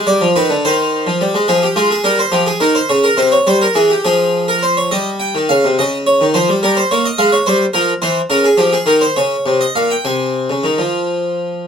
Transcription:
0.07 0.21 G3 medium
0.07 0.25 D5 medium
0.21 0.35 F3 medium
0.36 0.49 D#3 medium
0.36 0.53 B4 medium
0.49 0.63 D3 medium
0.65 1.06 D#3 medium
0.65 1.47 C5 medium
1.07 1.20 F3 medium
1.21 1.34 G3 medium
1.34 1.48 G#3 medium
1.48 1.66 F3 medium
1.48 1.62 G#4 medium
1.63 1.76 G4 medium
1.76 1.94 G#3 medium
1.76 1.90 F4 medium
1.91 2.04 G#4 medium
2.04 2.22 G3 medium
2.04 2.18 A#4 medium
2.19 2.33 C5 medium
2.32 2.50 F3 medium
2.32 2.46 G4 medium
2.46 2.61 G#4 medium
2.60 2.79 D#3 medium
2.60 2.75 A#4 medium
2.75 2.89 C5 medium
2.89 3.08 C#3 medium
2.89 3.04 C#5 medium
3.04 3.18 A#4 medium
3.17 3.36 C3 medium
3.17 3.32 C5 medium
3.32 3.47 C#5 medium
3.47 3.65 G3 medium
3.47 3.61 C5 medium
3.61 3.76 A#4 medium
3.75 3.93 E3 medium
3.75 3.90 G#4 medium
3.90 4.04 G4 medium
4.04 4.88 F3 medium
4.04 4.46 G#4 medium
4.48 4.62 A#4 medium
4.63 4.76 C5 medium
4.77 4.91 C#5 medium
4.91 5.33 G3 medium
4.91 5.09 D#5 medium
5.20 5.37 G5 medium
5.35 5.48 D#3 medium
5.49 5.63 C#3 medium
5.49 5.67 F5 medium
5.64 5.78 C3 medium
5.79 6.20 C#3 medium
5.79 5.96 D#5 medium
6.07 6.24 C#5 medium
6.21 6.34 D#3 medium
6.34 6.48 F3 medium
6.34 6.52 C5 medium
6.49 6.62 G3 medium
6.63 6.80 G3 medium
6.63 6.76 A#4 medium
6.77 6.90 C5 medium
6.91 7.09 A#3 medium
6.91 7.05 C#5 medium
7.05 7.19 D#5 medium
7.18 7.36 G#3 medium
7.18 7.32 F5 medium
7.32 7.46 C#5 medium
7.46 7.64 G3 medium
7.46 7.64 C5 medium
7.73 7.92 F3 medium
7.73 7.91 A#4 medium
8.02 8.20 E3 medium
8.02 8.20 C5 medium
8.30 8.47 C#3 medium
8.30 8.44 A#4 medium
8.44 8.58 G#4 medium
8.57 8.75 F3 medium
8.57 8.72 G4 medium
8.72 8.87 G#4 medium
8.86 9.04 D#3 medium
8.86 9.01 A#4 medium
9.01 9.15 C5 medium
9.16 9.35 C#3 medium
9.16 9.59 C#5 medium
9.46 9.64 C3 medium
9.61 9.75 D#5 medium
9.75 9.94 A#2 medium
9.75 9.89 F5 medium
9.91 10.04 G5 medium
10.05 10.48 C3 medium
10.05 11.48 G#5 medium
10.50 10.63 C#3 soft
10.64 10.78 D#3 medium
10.78 11.67 F3 medium

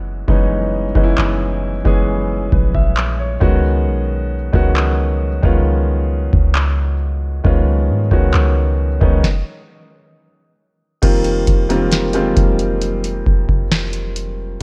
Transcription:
0.00 0.24 F#1 loud
0.00 0.28 E3 medium
0.00 0.28 G#3 medium
0.00 0.29 B3 medium
0.00 0.29 C#4 medium
0.00 3.43 F#4 medium
0.28 0.93 F#1 loud
0.28 0.84 E3 medium
0.28 0.84 G#3 medium
0.28 0.84 B3 medium
0.28 0.85 C#4 medium
0.28 0.85 D#4 medium
0.28 kick loud
0.95 1.17 F#1 medium
0.95 1.69 E3 medium
0.95 1.70 G#3 medium
0.95 1.70 B3 medium
0.95 1.70 C#4 medium
0.95 1.03 D#4 medium
0.95 kick loud
1.04 1.74 E4 medium
1.18 1.82 F#1 loud
1.18 clap loud
1.84 2.49 F#1 loud
1.84 3.33 E3 medium
1.84 3.34 G#3 medium
1.84 3.34 B3 medium
1.84 3.34 C#4 medium
1.84 3.34 G#4 medium
1.84 kick loud
2.52 3.38 A#1 loud
2.52 2.73 B4 medium
2.52 kick medium
2.75 3.17 E5 medium
2.75 kick medium
2.97 clap loud
3.19 3.62 C#5 medium
3.40 3.88 C#2 loud
3.40 4.34 D#3 medium
3.40 4.34 G#3 medium
3.40 4.35 B3 medium
3.40 4.35 C#4 medium
3.40 4.35 F#4 medium
3.40 kick loud
3.87 4.50 B1 loud
4.53 5.40 C#2 medium
4.53 5.27 D#3 medium
4.53 5.28 G#3 medium
4.53 5.28 B3 medium
4.53 5.28 C#4 medium
4.53 5.29 F#4 medium
4.53 kick medium
4.77 clap loud
5.42 6.29 C#2 loud
5.42 6.91 D#3 medium
5.42 6.92 G#3 medium
5.42 6.92 B3 medium
5.42 6.92 C#4 medium
5.42 6.93 F4 medium
5.42 kick medium
6.33 7.41 C#2 medium
6.33 kick medium
6.55 clap loud
7.43 7.91 C#2 loud
7.43 8.00 D#3 medium
7.43 8.00 G#3 medium
7.43 8.00 B3 medium
7.43 8.01 C#4 medium
7.43 8.01 F4 medium
7.43 kick loud
7.90 8.11 G#2 loud
8.11 8.33 C#2 medium
8.11 8.86 D#3 medium
8.11 8.86 G#3 medium
8.11 8.86 B3 medium
8.11 8.87 C#4 medium
8.11 8.87 F#4 medium
8.11 kick medium
8.34 8.99 C#2 loud
8.34 clap loud
9.00 9.23 C#2 loud
9.00 9.23 D#3 medium
9.00 9.23 G#3 medium
9.00 9.24 B3 medium
9.00 9.24 C#4 medium
9.00 9.24 D#4 medium
9.00 kick loud
9.24 kick loud
9.24 snare medium
11.02 11.46 F1 loud
11.02 11.58 D#3 medium
11.02 11.58 G3 medium
11.02 11.59 A#3 medium
11.02 11.59 C4 medium
11.02 11.59 F4 medium
11.02 kick loud
11.02 closed hi-hat medium
11.02 crash loud
11.24 closed hi-hat soft
11.47 12.34 F1 loud
11.47 kick medium
11.47 closed hi-hat medium
11.69 12.07 D#3 medium
11.69 12.07 G3 medium
11.69 12.07 A#3 medium
11.69 12.08 C4 medium
11.69 12.08 F4 medium
11.69 closed hi-hat soft
11.92 snare loud
11.92 closed hi-hat medium
12.14 13.63 D#3 medium
12.14 13.63 G3 medium
12.14 12.21 G#3 medium
12.14 13.64 C4 medium
12.14 13.64 F4 medium
12.14 closed hi-hat medium
12.21 13.67 A#3 medium
12.37 13.23 F1 loud
12.37 kick medium
12.37 closed hi-hat medium
12.59 closed hi-hat soft
12.82 closed hi-hat medium
13.04 closed hi-hat soft
13.27 14.57 F1 loud
13.27 kick medium
13.49 kick loud
13.72 snare loud
13.72 closed hi-hat medium
13.93 closed hi-hat soft
14.16 closed hi-hat medium

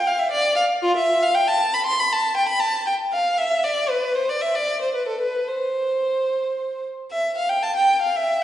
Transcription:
0.07 0.19 F5 medium
0.19 0.32 E5 medium
0.31 0.57 D5 medium
0.56 0.64 F5 medium
0.82 0.96 F4 medium
0.97 1.22 E5 medium
1.22 1.35 F5 medium
1.34 1.48 G5 medium
1.48 1.73 A5 medium
1.74 1.86 B5 medium
1.86 1.98 C6 medium
1.99 2.11 B5 medium
2.12 2.37 A5 medium
2.37 2.49 G5 medium
2.48 2.61 B5 medium
2.60 2.86 A5 medium
2.87 2.95 G5 medium
3.13 3.37 F5 medium
3.38 3.63 E5 medium
3.64 3.89 D5 medium
3.90 4.15 B4 medium
4.15 4.28 C5 medium
4.29 4.42 D5 medium
4.41 4.54 E5 medium
4.55 4.81 D5 medium
4.82 4.94 C5 soft
4.94 5.07 B4 medium
5.08 5.21 A4 soft
5.21 5.47 B4 soft
5.48 6.84 C5 medium
7.11 7.34 E5 medium
7.37 7.49 F5 medium
7.49 7.62 G5 medium
7.63 7.75 A5 medium
7.76 8.01 G5 medium
8.01 8.14 F5 medium
8.16 8.41 E5 medium

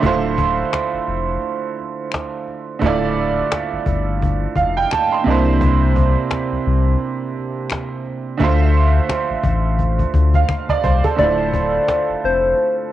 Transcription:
0.00 0.63 D1 loud
0.00 2.76 D3 medium
0.00 2.77 A3 medium
0.00 2.78 E4 medium
0.00 cajon bass loud
0.04 2.79 F4 medium
0.04 2.79 C5 medium
0.38 cajon bass loud
0.73 finger snap medium
0.73 cajon slap loud
0.93 0.99 F1 medium
1.08 1.38 F1 medium
1.08 cajon slap soft
1.42 cajon slap soft
1.80 cajon slap soft
2.12 finger snap medium
2.12 cajon slap loud
2.48 cajon slap soft
2.79 3.42 D1 loud
2.79 4.86 D3 medium
2.79 4.87 A3 medium
2.79 4.87 E4 medium
2.79 cajon bass loud
2.84 4.88 F4 medium
2.84 4.89 D5 medium
3.17 cajon slap soft
3.52 finger snap medium
3.52 cajon slap loud
3.73 3.78 G1 soft
3.86 4.46 G1 medium
3.86 cajon bass medium
4.22 cajon bass medium
4.55 4.86 F1 medium
4.55 4.75 F5 medium
4.55 cajon bass medium
4.77 4.90 G5 medium
4.91 5.10 A5 medium
4.91 finger snap medium
4.91 cajon slap loud
5.12 5.45 C6 medium
5.24 6.16 C2 medium
5.24 8.00 C3 medium
5.24 8.01 A#3 medium
5.24 8.02 D4 medium
5.24 cajon slap soft
5.29 8.02 E4 medium
5.29 8.03 C5 medium
5.61 cajon bass loud
5.96 cajon bass medium
6.31 finger snap medium
6.31 cajon slap loud
6.52 6.58 C2 soft
6.66 6.96 C2 medium
6.66 cajon slap soft
7.00 cajon slap soft
7.37 cajon slap soft
7.70 finger snap medium
7.70 cajon slap loud
8.06 cajon slap soft
8.37 9.00 D2 loud
8.37 11.14 D3 medium
8.37 11.14 A3 medium
8.37 11.15 E5 medium
8.37 cajon bass loud
8.42 11.16 F4 medium
8.42 10.13 C5 medium
9.09 finger snap medium
9.09 cajon slap loud
9.30 9.36 A1 soft
9.43 10.04 A1 medium
9.43 cajon bass medium
9.78 cajon bass medium
9.78 cajon slap soft
9.99 cajon bass medium
10.14 10.44 D2 medium
10.14 cajon bass medium
10.34 10.68 F5 medium
10.34 cajon bass medium
10.49 finger snap medium
10.49 cajon bass medium
10.69 10.83 D5 medium
10.69 cajon bass medium
10.84 11.01 C2 medium
10.84 11.03 C5 medium
10.84 cajon bass medium
11.04 11.37 A4 medium
11.04 cajon bass loud
11.16 11.79 D1 loud
11.16 12.92 D3 medium
11.16 12.92 A3 medium
11.16 12.92 E4 medium
11.16 12.27 D5 loud
11.16 cajon bass loud
11.21 12.92 F4 medium
11.21 12.92 C5 medium
11.54 cajon bass loud
11.89 cajon slap loud
12.10 12.15 F1 soft
12.24 12.54 F1 medium
12.24 12.76 C5 medium
12.24 cajon slap soft
12.58 cajon slap soft

